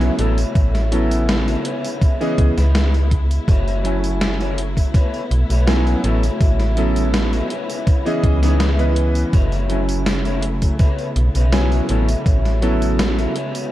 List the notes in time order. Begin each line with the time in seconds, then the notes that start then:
Already playing: B1 C#3 F#3 A3 B3 C#4 E4 A4 B4 C#5 G#5
0.01 closed hi-hat, tambourine
0.18 A1 F#3 B3 C#4 E4 F#4 A4 C#5, closed hi-hat
0.38 closed hi-hat, tambourine
0.55 A1, kick, closed hi-hat, tambourine
0.75 snare, closed hi-hat, tambourine
0.92 F#3 B3 C#4 E4 A4, closed hi-hat
1.11 closed hi-hat, tambourine
1.29 snare, closed hi-hat, tambourine
1.48 E4 F#4 A4 C#5, closed hi-hat, tambourine
1.65 G#3 B3 E4 G#4 B4 C#5, closed hi-hat
1.85 closed hi-hat, tambourine
2.02 kick, closed hi-hat, tambourine
2.20 E3 B3 C#4 G#4 D#5, closed hi-hat, tambourine
2.38 C#2, kick, closed hi-hat
2.57 C#2 E4 G#4 B4 E5, snare, closed hi-hat, tambourine
2.75 snare, closed hi-hat, tambourine
2.94 closed hi-hat, tambourine
3.11 kick, closed hi-hat
3.31 closed hi-hat, tambourine
3.48 F#1 F#3 A3 E4 F#4 A4 C#5, kick, closed hi-hat, tambourine
3.68 closed hi-hat, tambourine
3.84 F#3 A3 C#4 E4 G#5, closed hi-hat
4.04 closed hi-hat, tambourine
4.21 snare, closed hi-hat, tambourine
4.40 E4 F#4 A4 C#5, closed hi-hat, tambourine
4.58 closed hi-hat
4.77 muted clean electric guitar stroke, kick, closed hi-hat, tambourine
4.94 A3 B3 E4 A4 B4 C#5, kick, closed hi-hat, tambourine
5.14 closed hi-hat, tambourine
5.31 B1, closed hi-hat
5.50 B1 E4 A4 B4 C#5, closed hi-hat, tambourine
5.67 F#3 B3 C#4 E4 G#5, snare, closed hi-hat, tambourine
5.87 closed hi-hat, tambourine
6.04 A1 C#3 F#3 B3 C#4 E4 F#4 A4 C#5, closed hi-hat
6.23 closed hi-hat, tambourine
6.41 A1, kick, closed hi-hat, tambourine
6.60 snare, closed hi-hat, tambourine
6.77 F#3 B3 C#4 E4 A4, closed hi-hat
6.96 closed hi-hat, tambourine
7.14 snare, closed hi-hat, tambourine
7.33 E4 F#4 A4 C#5, closed hi-hat, tambourine
7.50 C#3 G#3 B3 E4 G#4 B4 C#5, closed hi-hat
7.70 closed hi-hat, tambourine
7.87 kick, closed hi-hat, tambourine
8.05 E3 B3 C#4 G#4 D#5, closed hi-hat, tambourine
8.23 C#2, kick, closed hi-hat
8.42 E3 B3 C#4 D#4 E4 G#4 B4 C#5, snare, closed hi-hat, tambourine
8.60 snare, closed hi-hat, tambourine
8.78 E3 B3 C#4 B4 D#5, closed hi-hat, tambourine
8.96 closed hi-hat
9.15 closed hi-hat, tambourine
9.32 F#1 F#3 A3 E4 F#4 A4 C#5, kick, closed hi-hat, tambourine
9.52 closed hi-hat, tambourine
9.69 F#3 A3 C#4 E4 G#5, closed hi-hat
9.89 closed hi-hat, tambourine
10.06 snare, closed hi-hat, tambourine
10.25 E4 F#4 A4 C#5, closed hi-hat, tambourine
10.42 closed hi-hat
10.62 muted clean electric guitar stroke, kick, closed hi-hat, tambourine
10.79 B3 E4 A4 B4 C#5, kick, closed hi-hat, tambourine
10.99 closed hi-hat, tambourine
11.16 B1, closed hi-hat
11.35 B1 E4 A4 B4 C#5, closed hi-hat, tambourine
11.52 F#3 B3 C#4 E4 G#5, snare, closed hi-hat, tambourine
11.72 closed hi-hat, tambourine
11.89 A1 F#3 A3 B3 C#4 E4 F#4 A4 C#5, closed hi-hat
12.08 closed hi-hat, tambourine
12.26 A1, kick, closed hi-hat, tambourine
12.45 snare, closed hi-hat, tambourine
12.62 F#3 B3 C#4 E4 A4, closed hi-hat
12.82 closed hi-hat, tambourine
12.99 snare, closed hi-hat, tambourine
13.18 E4 F#4 A4 E5, closed hi-hat, tambourine
13.35 G#3 B3 E4 G#4 B4 C#5, closed hi-hat
13.55 closed hi-hat, tambourine